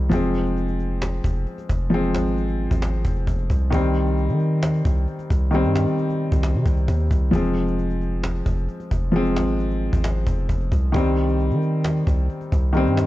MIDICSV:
0, 0, Header, 1, 4, 480
1, 0, Start_track
1, 0, Key_signature, -4, "minor"
1, 0, Tempo, 451128
1, 123, Time_signature, 4, 2, 24, 8
1, 13900, End_track
2, 0, Start_track
2, 0, Title_t, "Grand piano"
2, 0, Program_c, 0, 0
2, 0, Control_c, 0, 64, 127
2, 0, Note_on_c, 0, 51, 78
2, 0, Note_on_c, 0, 55, 70
2, 0, Note_on_c, 0, 60, 88
2, 100, Note_on_c, 0, 53, 80
2, 122, Note_on_c, 0, 56, 68
2, 138, Note_off_c, 0, 60, 0
2, 138, Control_c, 0, 64, 0
2, 144, Note_on_c, 0, 60, 85
2, 148, Note_off_c, 0, 51, 0
2, 148, Note_off_c, 0, 55, 0
2, 341, Control_c, 0, 64, 127
2, 1993, Note_off_c, 0, 53, 0
2, 2004, Note_off_c, 0, 56, 0
2, 2015, Note_off_c, 0, 60, 0
2, 2021, Note_on_c, 0, 53, 77
2, 2043, Note_on_c, 0, 56, 72
2, 2065, Note_on_c, 0, 60, 95
2, 3913, Note_off_c, 0, 53, 0
2, 3925, Note_off_c, 0, 56, 0
2, 3936, Note_off_c, 0, 60, 0
2, 3941, Note_on_c, 0, 51, 77
2, 3963, Note_on_c, 0, 55, 73
2, 3979, Control_c, 0, 64, 0
2, 3985, Note_on_c, 0, 60, 90
2, 4169, Control_c, 0, 64, 127
2, 5833, Note_off_c, 0, 51, 0
2, 5845, Note_off_c, 0, 55, 0
2, 5856, Note_off_c, 0, 60, 0
2, 5860, Note_on_c, 0, 51, 75
2, 5882, Note_on_c, 0, 55, 70
2, 5903, Note_on_c, 0, 60, 91
2, 7753, Note_off_c, 0, 51, 0
2, 7764, Note_off_c, 0, 55, 0
2, 7775, Note_off_c, 0, 60, 0
2, 7779, Note_on_c, 0, 53, 80
2, 7801, Note_on_c, 0, 56, 71
2, 7815, Control_c, 0, 64, 0
2, 7823, Note_on_c, 0, 60, 83
2, 7992, Control_c, 0, 64, 127
2, 9673, Note_off_c, 0, 53, 0
2, 9684, Note_off_c, 0, 56, 0
2, 9695, Note_off_c, 0, 60, 0
2, 9701, Note_on_c, 0, 53, 78
2, 9723, Note_on_c, 0, 56, 74
2, 9745, Note_on_c, 0, 60, 91
2, 11593, Note_off_c, 0, 53, 0
2, 11605, Note_off_c, 0, 56, 0
2, 11616, Note_off_c, 0, 60, 0
2, 11620, Note_on_c, 0, 51, 76
2, 11642, Note_on_c, 0, 55, 73
2, 11659, Control_c, 0, 64, 0
2, 11664, Note_on_c, 0, 60, 89
2, 11846, Control_c, 0, 64, 127
2, 13513, Note_off_c, 0, 51, 0
2, 13524, Note_off_c, 0, 55, 0
2, 13535, Note_off_c, 0, 60, 0
2, 13541, Note_on_c, 0, 51, 79
2, 13563, Note_on_c, 0, 55, 68
2, 13585, Note_on_c, 0, 60, 90
2, 13900, Note_off_c, 0, 51, 0
2, 13900, Note_off_c, 0, 55, 0
2, 13900, Note_off_c, 0, 60, 0
2, 13900, End_track
3, 0, Start_track
3, 0, Title_t, "808-style bass"
3, 0, Program_c, 1, 38
3, 0, Note_on_c, 1, 36, 110
3, 113, Note_off_c, 1, 36, 0
3, 122, Note_on_c, 1, 29, 113
3, 1280, Note_off_c, 1, 29, 0
3, 1322, Note_on_c, 1, 29, 106
3, 1553, Note_off_c, 1, 29, 0
3, 1803, Note_on_c, 1, 29, 116
3, 2283, Note_on_c, 1, 32, 99
3, 2299, Note_off_c, 1, 29, 0
3, 2853, Note_off_c, 1, 32, 0
3, 2883, Note_on_c, 1, 32, 101
3, 3229, Note_off_c, 1, 32, 0
3, 3242, Note_on_c, 1, 29, 107
3, 3473, Note_off_c, 1, 29, 0
3, 3482, Note_on_c, 1, 29, 107
3, 3713, Note_off_c, 1, 29, 0
3, 3723, Note_on_c, 1, 36, 109
3, 3953, Note_off_c, 1, 36, 0
3, 3963, Note_on_c, 1, 36, 108
3, 4563, Note_on_c, 1, 51, 100
3, 4579, Note_off_c, 1, 36, 0
3, 5133, Note_off_c, 1, 51, 0
3, 5162, Note_on_c, 1, 36, 105
3, 5393, Note_off_c, 1, 36, 0
3, 5643, Note_on_c, 1, 36, 110
3, 6003, Note_on_c, 1, 43, 104
3, 6019, Note_off_c, 1, 36, 0
3, 6231, Note_off_c, 1, 43, 0
3, 6724, Note_on_c, 1, 36, 111
3, 6963, Note_on_c, 1, 48, 99
3, 6979, Note_off_c, 1, 36, 0
3, 7077, Note_off_c, 1, 48, 0
3, 7083, Note_on_c, 1, 36, 102
3, 7313, Note_off_c, 1, 36, 0
3, 7323, Note_on_c, 1, 39, 107
3, 7553, Note_off_c, 1, 39, 0
3, 7563, Note_on_c, 1, 36, 110
3, 7794, Note_off_c, 1, 36, 0
3, 7803, Note_on_c, 1, 29, 116
3, 8961, Note_off_c, 1, 29, 0
3, 9002, Note_on_c, 1, 29, 107
3, 9233, Note_off_c, 1, 29, 0
3, 9483, Note_on_c, 1, 29, 114
3, 9964, Note_on_c, 1, 32, 100
3, 9980, Note_off_c, 1, 29, 0
3, 10533, Note_off_c, 1, 32, 0
3, 10564, Note_on_c, 1, 32, 101
3, 10909, Note_off_c, 1, 32, 0
3, 10922, Note_on_c, 1, 29, 108
3, 11153, Note_off_c, 1, 29, 0
3, 11163, Note_on_c, 1, 29, 110
3, 11393, Note_off_c, 1, 29, 0
3, 11403, Note_on_c, 1, 36, 114
3, 11634, Note_off_c, 1, 36, 0
3, 11643, Note_on_c, 1, 36, 106
3, 12243, Note_on_c, 1, 51, 102
3, 12259, Note_off_c, 1, 36, 0
3, 12813, Note_off_c, 1, 51, 0
3, 12842, Note_on_c, 1, 36, 109
3, 13073, Note_off_c, 1, 36, 0
3, 13323, Note_on_c, 1, 36, 114
3, 13683, Note_on_c, 1, 43, 101
3, 13699, Note_off_c, 1, 36, 0
3, 13900, Note_off_c, 1, 43, 0
3, 13900, End_track
4, 0, Start_track
4, 0, Title_t, "Cajon"
4, 122, Note_on_c, 9, 36, 122
4, 229, Note_off_c, 9, 36, 0
4, 242, Note_on_c, 9, 38, 35
4, 349, Note_off_c, 9, 38, 0
4, 362, Note_on_c, 9, 38, 43
4, 469, Note_off_c, 9, 38, 0
4, 482, Note_on_c, 9, 38, 31
4, 589, Note_off_c, 9, 38, 0
4, 602, Note_on_c, 9, 38, 45
4, 709, Note_off_c, 9, 38, 0
4, 723, Note_on_c, 9, 38, 39
4, 829, Note_off_c, 9, 38, 0
4, 843, Note_on_c, 9, 38, 41
4, 949, Note_off_c, 9, 38, 0
4, 1083, Note_on_c, 9, 38, 118
4, 1095, Note_off_c, 9, 38, 0
4, 1095, Note_on_c, 9, 38, 93
4, 1201, Note_off_c, 9, 38, 0
4, 1203, Note_on_c, 9, 38, 30
4, 1310, Note_off_c, 9, 38, 0
4, 1322, Note_on_c, 9, 36, 96
4, 1428, Note_off_c, 9, 36, 0
4, 1443, Note_on_c, 9, 38, 33
4, 1549, Note_off_c, 9, 38, 0
4, 1563, Note_on_c, 9, 38, 50
4, 1669, Note_off_c, 9, 38, 0
4, 1683, Note_on_c, 9, 38, 45
4, 1789, Note_off_c, 9, 38, 0
4, 1803, Note_on_c, 9, 36, 96
4, 1909, Note_off_c, 9, 36, 0
4, 2043, Note_on_c, 9, 38, 38
4, 2149, Note_off_c, 9, 38, 0
4, 2162, Note_on_c, 9, 38, 35
4, 2269, Note_off_c, 9, 38, 0
4, 2282, Note_on_c, 9, 38, 101
4, 2294, Note_off_c, 9, 38, 0
4, 2294, Note_on_c, 9, 38, 80
4, 2400, Note_off_c, 9, 38, 0
4, 2403, Note_on_c, 9, 38, 31
4, 2510, Note_off_c, 9, 38, 0
4, 2523, Note_on_c, 9, 38, 47
4, 2629, Note_off_c, 9, 38, 0
4, 2643, Note_on_c, 9, 38, 39
4, 2749, Note_off_c, 9, 38, 0
4, 2884, Note_on_c, 9, 36, 99
4, 2990, Note_off_c, 9, 36, 0
4, 3003, Note_on_c, 9, 38, 120
4, 3014, Note_off_c, 9, 38, 0
4, 3014, Note_on_c, 9, 38, 93
4, 3121, Note_off_c, 9, 38, 0
4, 3123, Note_on_c, 9, 38, 29
4, 3230, Note_off_c, 9, 38, 0
4, 3242, Note_on_c, 9, 36, 95
4, 3349, Note_off_c, 9, 36, 0
4, 3363, Note_on_c, 9, 38, 33
4, 3469, Note_off_c, 9, 38, 0
4, 3482, Note_on_c, 9, 36, 93
4, 3589, Note_off_c, 9, 36, 0
4, 3603, Note_on_c, 9, 38, 46
4, 3709, Note_off_c, 9, 38, 0
4, 3723, Note_on_c, 9, 36, 95
4, 3829, Note_off_c, 9, 36, 0
4, 3963, Note_on_c, 9, 36, 123
4, 4069, Note_off_c, 9, 36, 0
4, 4083, Note_on_c, 9, 38, 35
4, 4189, Note_off_c, 9, 38, 0
4, 4202, Note_on_c, 9, 38, 42
4, 4309, Note_off_c, 9, 38, 0
4, 4322, Note_on_c, 9, 38, 31
4, 4429, Note_off_c, 9, 38, 0
4, 4442, Note_on_c, 9, 38, 45
4, 4549, Note_off_c, 9, 38, 0
4, 4562, Note_on_c, 9, 38, 37
4, 4669, Note_off_c, 9, 38, 0
4, 4683, Note_on_c, 9, 38, 40
4, 4789, Note_off_c, 9, 38, 0
4, 4923, Note_on_c, 9, 38, 119
4, 4935, Note_off_c, 9, 38, 0
4, 4935, Note_on_c, 9, 38, 92
4, 5041, Note_off_c, 9, 38, 0
4, 5043, Note_on_c, 9, 38, 30
4, 5150, Note_off_c, 9, 38, 0
4, 5162, Note_on_c, 9, 36, 97
4, 5269, Note_off_c, 9, 36, 0
4, 5283, Note_on_c, 9, 38, 33
4, 5389, Note_off_c, 9, 38, 0
4, 5403, Note_on_c, 9, 38, 49
4, 5509, Note_off_c, 9, 38, 0
4, 5523, Note_on_c, 9, 38, 46
4, 5629, Note_off_c, 9, 38, 0
4, 5643, Note_on_c, 9, 36, 92
4, 5749, Note_off_c, 9, 36, 0
4, 5883, Note_on_c, 9, 38, 39
4, 5989, Note_off_c, 9, 38, 0
4, 6003, Note_on_c, 9, 38, 35
4, 6109, Note_off_c, 9, 38, 0
4, 6123, Note_on_c, 9, 38, 100
4, 6135, Note_off_c, 9, 38, 0
4, 6135, Note_on_c, 9, 38, 80
4, 6241, Note_off_c, 9, 38, 0
4, 6243, Note_on_c, 9, 38, 31
4, 6350, Note_off_c, 9, 38, 0
4, 6363, Note_on_c, 9, 38, 45
4, 6470, Note_off_c, 9, 38, 0
4, 6484, Note_on_c, 9, 38, 38
4, 6590, Note_off_c, 9, 38, 0
4, 6724, Note_on_c, 9, 36, 97
4, 6830, Note_off_c, 9, 36, 0
4, 6844, Note_on_c, 9, 38, 116
4, 6855, Note_off_c, 9, 38, 0
4, 6855, Note_on_c, 9, 38, 93
4, 6962, Note_off_c, 9, 38, 0
4, 6963, Note_on_c, 9, 38, 30
4, 7070, Note_off_c, 9, 38, 0
4, 7083, Note_on_c, 9, 36, 96
4, 7189, Note_off_c, 9, 36, 0
4, 7204, Note_on_c, 9, 38, 33
4, 7310, Note_off_c, 9, 38, 0
4, 7323, Note_on_c, 9, 36, 93
4, 7429, Note_off_c, 9, 36, 0
4, 7444, Note_on_c, 9, 38, 28
4, 7524, Note_off_c, 9, 38, 0
4, 7524, Note_on_c, 9, 38, 39
4, 7563, Note_on_c, 9, 36, 91
4, 7604, Note_off_c, 9, 38, 0
4, 7604, Note_on_c, 9, 38, 44
4, 7669, Note_off_c, 9, 36, 0
4, 7710, Note_off_c, 9, 38, 0
4, 7803, Note_on_c, 9, 36, 123
4, 7910, Note_off_c, 9, 36, 0
4, 7924, Note_on_c, 9, 38, 36
4, 8030, Note_off_c, 9, 38, 0
4, 8044, Note_on_c, 9, 38, 42
4, 8150, Note_off_c, 9, 38, 0
4, 8164, Note_on_c, 9, 38, 30
4, 8270, Note_off_c, 9, 38, 0
4, 8284, Note_on_c, 9, 38, 44
4, 8390, Note_off_c, 9, 38, 0
4, 8403, Note_on_c, 9, 38, 38
4, 8510, Note_off_c, 9, 38, 0
4, 8524, Note_on_c, 9, 38, 42
4, 8630, Note_off_c, 9, 38, 0
4, 8763, Note_on_c, 9, 38, 119
4, 8775, Note_off_c, 9, 38, 0
4, 8775, Note_on_c, 9, 38, 94
4, 8881, Note_off_c, 9, 38, 0
4, 8883, Note_on_c, 9, 38, 31
4, 8990, Note_off_c, 9, 38, 0
4, 9002, Note_on_c, 9, 36, 94
4, 9109, Note_off_c, 9, 36, 0
4, 9123, Note_on_c, 9, 38, 34
4, 9229, Note_off_c, 9, 38, 0
4, 9243, Note_on_c, 9, 38, 48
4, 9349, Note_off_c, 9, 38, 0
4, 9363, Note_on_c, 9, 38, 46
4, 9469, Note_off_c, 9, 38, 0
4, 9483, Note_on_c, 9, 36, 93
4, 9589, Note_off_c, 9, 36, 0
4, 9723, Note_on_c, 9, 38, 38
4, 9830, Note_off_c, 9, 38, 0
4, 9843, Note_on_c, 9, 38, 36
4, 9950, Note_off_c, 9, 38, 0
4, 9963, Note_on_c, 9, 38, 102
4, 9975, Note_off_c, 9, 38, 0
4, 9975, Note_on_c, 9, 38, 84
4, 10081, Note_off_c, 9, 38, 0
4, 10084, Note_on_c, 9, 38, 31
4, 10190, Note_off_c, 9, 38, 0
4, 10203, Note_on_c, 9, 38, 45
4, 10310, Note_off_c, 9, 38, 0
4, 10323, Note_on_c, 9, 38, 41
4, 10429, Note_off_c, 9, 38, 0
4, 10564, Note_on_c, 9, 36, 100
4, 10670, Note_off_c, 9, 36, 0
4, 10683, Note_on_c, 9, 38, 116
4, 10695, Note_off_c, 9, 38, 0
4, 10695, Note_on_c, 9, 38, 94
4, 10801, Note_off_c, 9, 38, 0
4, 10803, Note_on_c, 9, 38, 29
4, 10910, Note_off_c, 9, 38, 0
4, 10922, Note_on_c, 9, 36, 97
4, 11029, Note_off_c, 9, 36, 0
4, 11163, Note_on_c, 9, 36, 93
4, 11269, Note_off_c, 9, 36, 0
4, 11283, Note_on_c, 9, 38, 46
4, 11390, Note_off_c, 9, 38, 0
4, 11403, Note_on_c, 9, 36, 95
4, 11510, Note_off_c, 9, 36, 0
4, 11643, Note_on_c, 9, 36, 123
4, 11750, Note_off_c, 9, 36, 0
4, 11764, Note_on_c, 9, 38, 35
4, 11870, Note_off_c, 9, 38, 0
4, 11884, Note_on_c, 9, 38, 40
4, 11990, Note_off_c, 9, 38, 0
4, 12003, Note_on_c, 9, 38, 31
4, 12109, Note_off_c, 9, 38, 0
4, 12123, Note_on_c, 9, 38, 46
4, 12230, Note_off_c, 9, 38, 0
4, 12243, Note_on_c, 9, 38, 39
4, 12350, Note_off_c, 9, 38, 0
4, 12363, Note_on_c, 9, 38, 41
4, 12469, Note_off_c, 9, 38, 0
4, 12603, Note_on_c, 9, 38, 117
4, 12615, Note_off_c, 9, 38, 0
4, 12615, Note_on_c, 9, 38, 95
4, 12721, Note_off_c, 9, 38, 0
4, 12723, Note_on_c, 9, 38, 30
4, 12830, Note_off_c, 9, 38, 0
4, 12842, Note_on_c, 9, 36, 95
4, 12949, Note_off_c, 9, 36, 0
4, 12963, Note_on_c, 9, 38, 33
4, 13070, Note_off_c, 9, 38, 0
4, 13083, Note_on_c, 9, 38, 48
4, 13190, Note_off_c, 9, 38, 0
4, 13203, Note_on_c, 9, 38, 45
4, 13310, Note_off_c, 9, 38, 0
4, 13323, Note_on_c, 9, 36, 93
4, 13429, Note_off_c, 9, 36, 0
4, 13563, Note_on_c, 9, 38, 38
4, 13670, Note_off_c, 9, 38, 0
4, 13683, Note_on_c, 9, 38, 35
4, 13790, Note_off_c, 9, 38, 0
4, 13804, Note_on_c, 9, 38, 105
4, 13815, Note_off_c, 9, 38, 0
4, 13815, Note_on_c, 9, 38, 82
4, 13900, Note_off_c, 9, 38, 0
4, 13900, End_track
0, 0, End_of_file